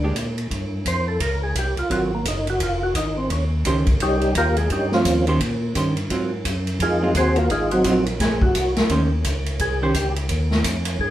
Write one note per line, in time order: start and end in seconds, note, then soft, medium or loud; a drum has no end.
0.00 0.13 D2 medium
0.00 0.15 G#3 soft
0.00 0.13 D4 medium
0.04 0.15 D4 medium
0.04 0.15 G4 medium
0.15 0.47 A#2 medium
0.15 hi-hat pedal soft
0.15 ride medium
0.38 ride soft
0.50 0.84 G2 medium
0.50 kick soft
0.50 ride soft
0.85 1.19 F2 medium
0.85 1.08 C5 medium
0.85 kick soft
0.85 hi-hat pedal medium
0.85 ride medium
1.08 1.20 A4 medium
1.20 1.54 C#2 medium
1.20 1.42 A#4 medium
1.20 kick soft
1.20 ride medium
1.43 1.56 G#4 medium
1.55 1.75 C2 medium
1.55 1.78 G4 medium
1.55 kick soft
1.55 hi-hat pedal soft
1.55 ride medium
1.76 1.83 C2 soft
1.76 1.91 F4 medium
1.76 ride soft
1.90 2.24 G#1 medium
1.90 2.10 F#3 medium
1.90 2.10 C4 soft
1.90 2.10 F4 medium
1.90 2.12 F#4 medium
1.90 kick soft
1.90 ride medium
2.15 2.26 A#3 medium
2.25 2.59 F#1 medium
2.25 2.48 D#4 medium
2.25 kick soft
2.25 hi-hat pedal medium
2.25 ride medium
2.47 2.61 F#4 medium
2.47 ride soft
2.60 2.94 F1 medium
2.60 2.83 F4 medium
2.60 kick soft
2.60 ride medium
2.83 2.96 F#4 medium
2.95 3.29 G#1 medium
2.95 3.17 D#4 medium
2.95 kick soft
2.95 hi-hat pedal soft
2.95 ride medium
3.18 3.30 C4 medium
3.30 3.64 D#2 medium
3.30 3.45 C#4 medium
3.30 kick soft
3.30 ride medium
3.65 3.99 C#2 medium
3.65 3.85 D#3 medium
3.65 3.85 C#4 medium
3.65 3.85 G4 medium
3.65 3.86 C5 medium
3.65 kick soft
3.65 hi-hat pedal medium
3.65 ride medium
3.87 kick medium
3.87 ride soft
3.99 4.34 C2 medium
3.99 4.34 G3 medium
3.99 4.34 C#4 medium
3.99 4.34 D#4 medium
3.99 4.34 G4 medium
3.99 kick soft
3.99 ride medium
4.21 ride soft
4.34 4.69 D#2 medium
4.34 4.57 A#3 medium
4.34 4.58 F4 medium
4.34 4.58 G4 medium
4.34 4.57 A#4 medium
4.34 kick soft
4.34 hi-hat pedal medium
4.34 ride medium
4.57 4.70 G#3 medium
4.57 4.70 G#4 medium
4.57 ride soft
4.70 5.04 G2 medium
4.70 4.92 G3 medium
4.70 4.92 C#4 medium
4.70 4.92 D#4 medium
4.70 4.92 G4 medium
4.70 kick soft
4.70 ride medium
4.92 5.26 F3 medium
4.92 5.25 C4 medium
4.92 5.26 C#4 medium
4.92 5.25 F4 medium
4.92 snare soft
5.05 5.39 D#2 medium
5.05 kick soft
5.05 hi-hat pedal medium
5.05 ride medium
5.27 5.39 D#3 medium
5.27 5.39 C#4 medium
5.27 5.39 G4 medium
5.27 5.40 C5 medium
5.27 ride soft
5.40 5.74 A#2 medium
5.40 kick soft
5.40 ride medium
5.75 6.09 G2 medium
5.75 5.95 D#3 soft
5.75 5.95 C#4 medium
5.75 5.95 G4 medium
5.75 5.95 C5 medium
5.75 kick soft
5.75 hi-hat pedal soft
5.75 ride medium
5.97 ride soft
6.10 6.44 G#2 medium
6.10 6.30 F#3 medium
6.10 6.30 C4 medium
6.10 6.30 F4 medium
6.10 kick soft
6.10 ride medium
6.45 6.79 F#2 medium
6.45 kick soft
6.45 hi-hat pedal medium
6.45 ride medium
6.67 ride soft
6.79 7.14 F2 medium
6.79 7.14 G#3 medium
6.79 7.14 D#4 medium
6.79 7.14 F4 medium
6.79 7.14 G#4 medium
6.79 kick soft
6.79 ride medium
7.02 7.14 F#3 medium
7.02 7.14 C4 medium
7.02 7.14 F4 medium
7.14 7.49 D#2 medium
7.14 7.37 C4 medium
7.14 7.36 F#4 medium
7.14 7.37 G#4 medium
7.14 7.37 C5 medium
7.14 kick soft
7.14 hi-hat pedal medium
7.14 ride medium
7.36 7.50 A#3 medium
7.36 7.50 F4 medium
7.36 7.50 F#4 medium
7.36 7.50 A#4 medium
7.36 ride soft
7.50 7.84 G#1 medium
7.50 7.72 G#3 medium
7.50 7.71 D#4 medium
7.50 7.72 F4 medium
7.50 7.72 G#4 medium
7.50 kick soft
7.50 ride medium
7.71 8.05 F#3 medium
7.71 8.04 C4 medium
7.71 8.04 D#4 medium
7.71 8.04 F#4 medium
7.71 ride soft
7.84 8.18 A#1 medium
7.84 8.05 F#3 medium
7.84 8.05 C4 medium
7.84 8.05 F4 medium
7.84 kick soft
7.84 hi-hat pedal medium
7.84 ride medium
8.06 ride soft
8.19 8.53 A#1 medium
8.19 8.42 G#4 medium
8.19 kick soft
8.19 snare soft
8.19 ride medium
8.41 8.74 F#4 medium
8.41 kick medium
8.54 8.75 C2 medium
8.54 kick soft
8.54 hi-hat pedal soft
8.54 ride medium
8.76 8.83 C2 soft
8.76 snare soft
8.76 ride soft
8.89 9.23 D#2 medium
8.89 9.10 D#3 medium
8.89 9.10 C#4 medium
8.89 9.10 G4 medium
8.89 9.10 C5 medium
8.89 kick soft
8.89 ride medium
9.24 9.58 C#2 medium
9.24 kick soft
9.24 hi-hat pedal medium
9.24 ride medium
9.46 ride soft
9.59 9.93 C2 medium
9.59 9.81 G#4 medium
9.59 kick soft
9.59 ride medium
9.82 9.94 D#3 medium
9.82 9.94 C#4 medium
9.82 10.15 G4 medium
9.82 9.94 G4 medium
9.82 9.94 C5 medium
9.94 10.28 C#2 medium
9.94 kick soft
9.94 hi-hat pedal medium
9.94 ride medium
10.16 ride soft
10.29 10.63 D#2 medium
10.29 kick soft
10.29 ride medium
10.51 snare soft
10.64 10.98 F2 medium
10.64 kick soft
10.64 hi-hat pedal medium
10.64 ride medium
10.85 ride medium
10.99 11.10 G2 medium
10.99 11.10 G#4 medium
10.99 kick soft